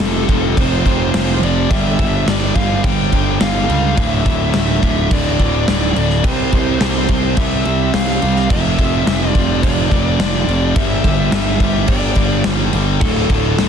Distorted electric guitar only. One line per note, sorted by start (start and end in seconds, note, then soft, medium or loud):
0.00 0.27 F2 medium
0.00 0.28 C3 medium
0.00 0.29 F3 medium
0.28 0.56 F2 medium
0.28 0.57 C3 medium
0.28 0.58 F3 medium
0.57 0.84 F2 medium
0.57 0.85 C3 loud
0.57 0.86 F3 loud
0.85 1.13 F2 medium
0.85 1.14 C3 medium
0.85 1.15 F3 medium
1.15 1.42 F2 medium
1.15 1.43 C3 medium
1.15 1.43 F3 medium
1.43 1.69 F2 medium
1.43 1.70 C3 medium
1.43 1.70 F3 loud
1.71 1.97 G2 loud
1.71 1.98 D3 loud
1.71 1.99 G3 loud
1.99 2.26 G2 medium
1.99 2.27 D3 loud
1.99 2.27 G3 loud
2.27 2.54 G2 medium
2.27 2.56 D3 medium
2.27 2.56 G3 medium
2.56 2.82 G2 medium
2.56 2.83 D3 medium
2.56 2.84 G3 loud
2.84 3.11 G2 loud
2.84 3.12 D3 loud
2.84 3.12 G3 loud
3.12 3.38 G2 medium
3.12 3.39 D3 medium
3.12 3.40 G3 medium
3.40 3.67 G2 medium
3.40 3.67 D3 medium
3.40 3.68 G3 medium
3.68 3.95 G2 medium
3.68 3.95 D3 loud
3.68 3.96 G3 loud
3.96 4.24 D2 medium
3.96 4.24 A2 loud
3.96 4.25 D3 loud
4.25 4.52 D2 medium
4.25 4.52 A2 medium
4.25 4.53 D3 medium
4.53 4.81 D2 medium
4.53 4.81 A2 medium
4.53 4.82 D3 medium
4.82 5.10 D2 medium
4.82 5.10 A2 medium
4.82 5.11 D3 medium
5.11 5.38 D2 medium
5.11 5.38 A2 loud
5.11 5.39 D3 loud
5.39 5.65 D2 medium
5.39 5.66 A2 loud
5.39 5.67 D3 medium
5.67 5.94 D2 medium
5.67 5.95 A2 medium
5.67 5.96 D3 medium
5.96 6.22 D2 medium
5.96 6.23 A2 medium
5.96 6.23 D3 loud
6.23 6.50 C3 medium
6.23 6.51 G3 loud
6.23 6.53 C4 loud
6.52 6.79 C3 medium
6.52 6.80 G3 medium
6.52 6.81 C4 medium
6.80 7.07 C3 medium
6.80 7.08 G3 medium
6.80 7.09 C4 medium
7.08 7.35 C3 medium
7.08 7.36 G3 medium
7.08 7.37 C4 medium
7.36 7.63 C3 medium
7.36 7.64 G3 loud
7.36 7.65 C4 loud
7.64 7.91 C3 medium
7.64 7.92 G3 medium
7.64 7.93 C4 loud
7.92 8.20 C3 medium
7.92 8.21 G3 medium
7.92 8.22 C4 medium
8.21 8.48 C3 medium
8.21 8.48 G3 loud
8.21 8.49 C4 medium
8.50 8.77 F2 medium
8.50 8.78 C3 loud
8.50 8.79 F3 loud
8.78 9.05 F2 medium
8.78 9.06 C3 medium
8.78 9.06 F3 loud
9.06 9.33 F2 medium
9.06 9.34 C3 medium
9.06 9.34 F3 medium
9.34 9.61 F2 medium
9.34 9.63 C3 medium
9.34 9.63 F3 medium
9.63 9.90 F2 loud
9.63 9.91 C3 loud
9.63 9.92 F3 loud
9.91 10.19 F2 medium
9.91 10.20 C3 medium
9.91 10.21 F3 medium
10.21 10.48 F2 medium
10.21 10.49 C3 loud
10.21 10.49 F3 medium
10.49 10.75 F2 medium
10.49 10.75 C3 medium
10.49 10.75 F3 medium
10.77 11.04 G2 loud
10.77 11.04 D3 loud
10.77 11.05 G3 loud
11.05 11.32 G2 medium
11.05 11.33 D3 medium
11.05 11.33 G3 loud
11.34 11.60 G2 medium
11.34 11.61 D3 medium
11.34 11.62 G3 loud
11.62 11.88 G2 medium
11.62 11.89 D3 medium
11.62 11.89 G3 medium
11.89 12.16 G2 medium
11.89 12.17 D3 loud
11.89 12.17 G3 loud
12.17 12.44 G2 medium
12.17 12.45 D3 medium
12.17 12.46 G3 medium
12.45 12.72 G2 medium
12.45 12.73 D3 medium
12.45 12.74 G3 medium
12.73 12.99 G2 medium
12.73 13.00 D3 loud
12.73 13.00 G3 loud
13.01 13.29 D2 loud
13.01 13.29 A2 loud
13.01 13.30 D3 medium
13.30 13.56 D2 medium
13.30 13.57 A2 medium
13.30 13.57 D3 medium
13.58 13.69 D2 medium
13.58 13.69 A2 medium
13.58 13.69 D3 loud